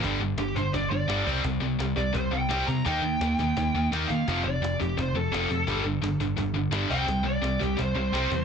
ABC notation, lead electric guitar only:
X:1
M:4/4
L:1/8
Q:1/4=170
K:Gm
V:1 name="Lead electric guitar"
z2 G c d d2 z | z3 d c g2 b | g6 z f- | f d2 G c A3- |
A z6 g- | g d2 G c c3 |]